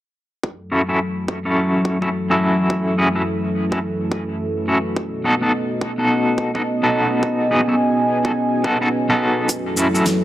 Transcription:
0.43 F#3 C#4 E4 A4, kick
0.67 F#4
0.72 C#4 E4 F#4 A4
0.88 C#4 E4 F#4 A4
1.28 B4 E5, kick
1.45 C#4 E4 F#4 A4
1.85 kick
2.02 C#4 E4 F#4 A4, kick
2.30 C#4 E4 F#4 A4
2.70 kick
2.98 C#4 E4 F#4 G#4
3.15 C#4 E4 F#4 A4
3.72 C#4 E4 F#4 A4, kick
4.12 kick
4.68 C#4 E4 F#4 A4
4.96 B3 D#5, kick
5.24 B3 D#4 F#4 A4
5.41 B3 D#4 F#4 A4
5.81 kick
5.98 B3 D#4 F#4 A4
6.18 D#5
6.38 kick
6.55 B3 D#4 F#4 A4, kick
6.83 B3 D#4 F#4 A4
7.23 G#5, kick
7.51 B3 D#4 F#4 G#4
7.68 B3 D#4 F#4 A4
8.25 B3 D#4 F#4 A4, kick
8.64 B3 D#4 F#4 A4, kick
8.81 B3 D#4 F#4 A4
9.10 B3 D#4 F#4 A4
9.49 F#3 E4 A4, kick, closed hi-hat, maracas
9.77 C#4 E4 F#4 A4, maracas
9.94 C#4 E4 F#4 A4 E5, maracas
10.06 snare, closed hi-hat, maracas

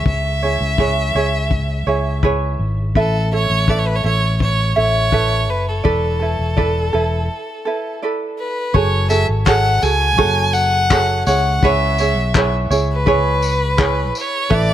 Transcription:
Already playing: E4 G#4 B4 C#5
0.06 C#2 E5, kick
0.43 E4 G#4 C#5
0.61 C#2
0.78 E4 G#4 B4 C#5, kick
1.15 C#2 E4 G#4 C#5
1.51 kick
1.87 C#2 E4 G#4 C#5
2.23 E4 G#4 B4 C#5, kick
2.59 G#1
2.95 A1 E4 A4 B4 E5, kick
3.32 E4 A4 C#5 E5
3.50 A1
3.68 E4 A4 B4 D5 E5, kick
3.78 C#5
3.87 B4
3.95 C#5
4.04 A1 E4 A4 C#5 E5
4.40 C#5, kick
4.76 A1 E4 A4 C#5 E5
5.12 E4 A4 B4 E5, kick
5.49 F#1 B4
5.68 A4
5.84 E1 E4 A4 B4 D5, kick
6.20 E4 A4 B4
6.39 E1
6.57 E4 A4 B4 D5, kick
6.93 E1 E4 A4 B4
7.65 E4 A4 B4
8.02 E4 A4 B4 D5
8.39 B4
8.74 F#1 F#4 G#4 A4 C#5, kick
9.09 F#4 G#4 A4 E5, tambourine
9.29 G#1
9.46 F#4 G#4 A4 C#5 F#5, kick, clap
9.82 C#2 F#4 G#4 A4 G#5, tambourine
10.18 F#1 F#4 G#4 A4 C#5, kick
10.54 F#5, tambourine
10.91 F#4 G#4 A4 C#5, kick, clap
11.26 C#2 E4 G#4 C#5 F#5, tambourine
11.63 C#2 E4 G#4 B4 C#5 E5, kick
11.98 E4 G#4 C#5, tambourine
12.16 B1
12.35 E4 G#4 B4 C#5, kick, clap
12.70 C#2 E4 G#4 C#5, tambourine
12.92 B4
13.06 E4 G#4 B4 C#5, kick
13.42 tambourine
13.77 E4 G#4 B4 C#5, kick, clap
14.15 C#5, tambourine
14.50 A1 E4 A4 B4 E5, kick
14.55 D5

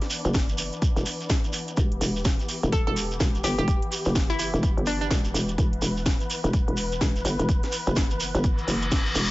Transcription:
Already playing: E3 B3 D4
0.02 snare, closed hi-hat
0.10 open hi-hat, shekere
0.25 F#1, closed hi-hat, shekere
0.34 kick, snare, closed hi-hat, shekere
0.49 closed hi-hat, shekere
0.58 open hi-hat, shekere
0.73 closed hi-hat, shekere
0.82 kick, closed hi-hat, shekere
0.96 E1, closed hi-hat, shekere
1.06 open hi-hat, shekere
1.20 closed hi-hat, shekere
1.29 kick, snare, closed hi-hat, shekere
1.44 closed hi-hat, shekere
1.53 open hi-hat, shekere
1.68 closed hi-hat, shekere
1.77 E1 G4, kick, closed hi-hat, shekere
1.92 closed hi-hat
2.01 E1, open hi-hat, shekere
2.16 shekere
2.25 kick, snare, closed hi-hat, shekere
2.39 closed hi-hat, shekere
2.49 open hi-hat, shekere
2.63 E1, closed hi-hat, shekere
2.72 A4, kick, closed hi-hat, shekere
2.87 E1 A4, closed hi-hat
2.96 open hi-hat, shekere
3.11 closed hi-hat, shekere
3.20 E1, kick, snare, closed hi-hat, shekere
3.35 closed hi-hat, shekere
3.44 G1 G4, open hi-hat, shekere
3.58 E1 G4, closed hi-hat, shekere
3.68 kick, closed hi-hat, shekere
3.82 closed hi-hat
3.92 open hi-hat, shekere
4.05 F#1, shekere
4.15 kick, snare, closed hi-hat, shekere
4.30 E4, closed hi-hat, shekere
4.39 E4, open hi-hat, shekere
4.54 E1, closed hi-hat, shekere
4.63 kick, closed hi-hat, shekere
4.77 G1, closed hi-hat
4.86 D4, open hi-hat, shekere
5.01 D4, closed hi-hat, shekere
5.11 E1, kick, snare, closed hi-hat, shekere
5.24 closed hi-hat, shekere
5.34 E1, open hi-hat, shekere
5.48 closed hi-hat, shekere
5.58 E1 B4, kick, closed hi-hat, shekere
5.73 closed hi-hat
5.82 E1, open hi-hat, shekere
5.97 shekere
6.06 kick, snare, closed hi-hat, shekere
6.21 closed hi-hat, shekere
6.30 open hi-hat, shekere
6.44 E1, closed hi-hat, shekere
6.53 kick, closed hi-hat, shekere
6.68 E1, closed hi-hat
6.77 open hi-hat, shekere
6.92 closed hi-hat, shekere
7.01 E1, kick, snare, closed hi-hat, shekere
7.16 closed hi-hat, shekere
7.25 G1, open hi-hat, shekere
7.39 E1, closed hi-hat, shekere
7.49 kick, closed hi-hat, shekere
7.63 snare, closed hi-hat
7.72 open hi-hat, shekere
7.87 F#1, closed hi-hat, shekere
7.96 kick, snare, closed hi-hat, shekere
8.10 closed hi-hat, shekere
8.20 open hi-hat, shekere
8.35 G1, closed hi-hat, shekere
8.43 kick, closed hi-hat, reverse cymbal, shekere
8.58 closed hi-hat, shekere
8.68 F#1, open hi-hat, shekere
8.82 closed hi-hat, shekere
8.91 kick, snare, closed hi-hat, shekere
9.06 closed hi-hat, shekere
9.15 E1, open hi-hat, shekere

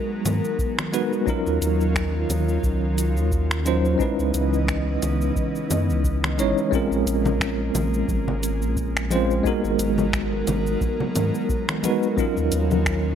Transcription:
Already playing: F#3 G#3 B3 D#4 F#4 A#4
0.25 G#2, closed hi-hat, low conga, shaker
0.45 shaker
0.59 kick, shaker
0.79 finger snap, low conga, shaker
0.92 G#3 B3 D#4 F#4 B4, closed hi-hat, shaker
1.13 shaker
1.26 D#3 F#3 C#4 D#4 F4 A#4, kick, shaker
1.46 D#2, shaker
1.61 D#2, closed hi-hat, shaker
1.81 shaker
1.95 finger snap, kick, shaker
2.29 D#2, closed hi-hat, low conga, shaker
2.49 shaker
2.63 C#2, kick, shaker
2.98 closed hi-hat, shaker
3.17 D#2, shaker
3.32 kick, shaker
3.51 finger snap, shaker
3.66 F#3 C#4 D#4 F4 C5, closed hi-hat, shaker
3.85 shaker
3.98 C#3 E3 G#3 B3 C#4 D#4 E4 D#5, kick, shaker
4.02 B4
4.19 C#2, shaker
4.34 C#2, closed hi-hat, shaker
4.54 shaker
4.68 finger snap, kick, shaker
5.02 C#2, closed hi-hat, low conga, shaker
5.21 shaker
5.36 kick, shaker
5.55 shaker
5.70 F#2, closed hi-hat, low conga, shaker
5.89 C#2, shaker
6.04 kick, shaker
6.24 finger snap, low conga, shaker
6.38 G#1 G#3 C#4 D#4 E4 C#5, closed hi-hat, shaker
6.58 shaker
6.71 G#3 A#3 C4 C#4 F4, kick, shaker
6.75 A#4
6.91 A#1, shaker
7.06 A#1, closed hi-hat, shaker
7.25 high conga, low conga, shaker
7.40 finger snap, kick, shaker
7.74 A#1, closed hi-hat, low conga, shaker
7.94 shaker
8.08 G#1, kick, high conga, shaker
8.28 low conga
8.43 closed hi-hat, shaker
8.62 A#1, shaker
8.77 kick, shaker
8.97 finger snap, shaker
9.11 G#3 C4 C#4 F4 C5, closed hi-hat, high conga, shaker
9.31 shaker
9.44 F#3 G#3 B3 D#4 F#4 A#4, kick, shaker
9.64 G#1, shaker
9.79 G#1, closed hi-hat, shaker
9.98 high conga, low conga, shaker
10.13 finger snap, kick, shaker
10.47 G#1, closed hi-hat, low conga, shaker
10.67 shaker
10.81 kick, high conga, shaker
11.00 low conga
11.16 G#2, closed hi-hat, low conga, shaker
11.35 shaker
11.49 kick, shaker
11.69 finger snap, low conga, shaker
11.83 G#3 B3 D#4 F#4 B4, closed hi-hat, high conga, shaker
12.03 shaker
12.17 D#3 F#3 C#4 D#4 F4 A#4, kick, shaker
12.37 D#2, shaker
12.52 D#2, closed hi-hat, shaker
12.71 high conga, low conga, shaker
12.86 finger snap, kick, shaker

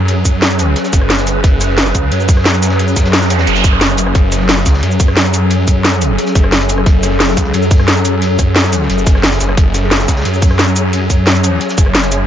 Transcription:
Already playing: F#2 F#3 C#4 G#4 B4
0.08 closed hi-hat
0.25 F#2, kick, closed hi-hat, shaker
0.42 snare, closed hi-hat
0.50 closed hi-hat, shaker
0.59 closed hi-hat, shaker
0.76 snare, closed hi-hat
0.84 snare, closed hi-hat, shaker
0.93 F#1, kick, closed hi-hat, shaker
1.01 cross-stick
1.10 snare, closed hi-hat
1.18 snare, closed hi-hat, shaker
1.27 snare, closed hi-hat, shaker
1.44 F#1, kick, closed hi-hat
1.60 cross-stick, snare, closed hi-hat, shaker
1.69 snare
1.77 snare, closed hi-hat
1.86 snare, shaker
1.95 C#2, kick, closed hi-hat, shaker
2.11 F#2, closed hi-hat
2.20 shaker
2.29 kick, closed hi-hat, open hi-hat, shaker
2.37 cross-stick
2.46 snare, closed hi-hat
2.54 snare, shaker
2.62 snare, closed hi-hat, shaker
2.70 snare, closed hi-hat
2.79 closed hi-hat, noise sweep
2.88 shaker
2.96 F#2, kick, snare, closed hi-hat, shaker
3.05 snare, closed hi-hat
3.13 snare, closed hi-hat
3.22 snare, closed hi-hat, shaker
3.30 snare, closed hi-hat, shaker
3.39 snare, closed hi-hat
3.47 F#1, snare, closed hi-hat
3.56 snare, closed hi-hat, shaker
3.64 kick, closed hi-hat, shaker
3.73 cross-stick
3.81 snare, closed hi-hat
3.90 snare, shaker
3.97 closed hi-hat, shaker
4.07 cross-stick
4.15 F#1 A4, kick, closed hi-hat
4.32 cross-stick, snare, closed hi-hat, shaker
4.40 snare
4.49 snare, closed hi-hat
4.57 snare, shaker
4.66 C#2, kick, snare, closed hi-hat, shaker
4.74 snare, closed hi-hat
4.78 snare, closed hi-hat
4.83 F#2, closed hi-hat
4.91 shaker
5.00 kick, closed hi-hat, open hi-hat, shaker
5.08 cross-stick
5.16 snare, closed hi-hat
5.25 snare, shaker
5.34 closed hi-hat, shaker
5.50 closed hi-hat
5.67 F#2, kick, closed hi-hat, shaker
5.84 snare, closed hi-hat
5.92 closed hi-hat, shaker
6.01 closed hi-hat, shaker
6.18 snare, closed hi-hat
6.26 snare, closed hi-hat, shaker
6.35 F#1, kick, closed hi-hat, shaker
6.44 cross-stick
6.52 snare, closed hi-hat
6.60 snare, closed hi-hat, shaker
6.69 snare, closed hi-hat, shaker
6.78 cross-stick
6.86 F#1, kick, closed hi-hat
7.03 cross-stick, snare, closed hi-hat, shaker
7.11 snare
7.19 snare, closed hi-hat
7.29 snare, shaker
7.37 C#2, kick, closed hi-hat, shaker
7.45 closed hi-hat
7.54 F#2, closed hi-hat
7.63 shaker
7.71 kick, closed hi-hat, open hi-hat, shaker
7.79 cross-stick
7.88 snare, closed hi-hat
7.96 snare, shaker
8.05 closed hi-hat, shaker
8.22 closed hi-hat
8.38 F#2, kick, cross-stick, closed hi-hat, shaker
8.55 snare, closed hi-hat
8.64 snare, closed hi-hat, shaker
8.73 closed hi-hat, shaker
8.82 snare
8.90 F#1, closed hi-hat
8.98 shaker
9.06 kick, snare, closed hi-hat, shaker
9.15 cross-stick, snare
9.22 snare, closed hi-hat
9.32 snare, closed hi-hat, shaker
9.36 snare, closed hi-hat
9.40 F#1, snare, closed hi-hat, shaker
9.49 cross-stick
9.57 F#1 C#5, kick, closed hi-hat
9.74 cross-stick, snare, closed hi-hat, shaker
9.83 snare
9.91 snare, closed hi-hat
10.00 snare, shaker
10.08 C#2, kick, snare, closed hi-hat, shaker
10.17 snare, closed hi-hat
10.21 snare, closed hi-hat
10.25 F#2, closed hi-hat
10.34 shaker
10.42 kick, closed hi-hat, open hi-hat, shaker
10.51 cross-stick
10.58 snare, closed hi-hat
10.67 snare, shaker
10.76 closed hi-hat, shaker
10.93 closed hi-hat
11.10 F#2, kick, closed hi-hat, shaker
11.26 snare, closed hi-hat
11.35 closed hi-hat, shaker
11.44 closed hi-hat, shaker
11.60 snare, closed hi-hat
11.69 snare, closed hi-hat, shaker
11.77 F#1, kick, closed hi-hat, shaker
11.86 cross-stick
11.95 snare, closed hi-hat
12.03 snare, closed hi-hat, shaker
12.11 snare, closed hi-hat, shaker

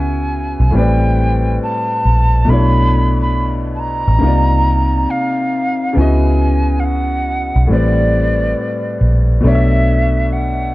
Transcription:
Already playing: C#2 C#3 B3 E4 F#4 E5 G#5
0.60 B1
0.71 A1 A2 G3 C4
0.76 B4 D5 G5
1.62 A5
2.05 A#1
2.45 B1 B2 A3 D4
2.50 E4 C#5 B5
3.21 B5
3.75 A5
3.80 A#5
4.08 A1
4.19 C2 C3 A#3 D#4
4.24 F4 D5
5.10 F5
5.93 C#2 C#3 B3 E4
5.98 F#4 D#5 G#5
6.80 F5
6.85 F#5
7.56 B1
7.67 A1 A2 G3 C4
7.71 B4 D5
9.01 A#1
9.41 B1 B2 A3 D4
9.46 C#5 D5 E5
9.55 E5
10.33 F#5

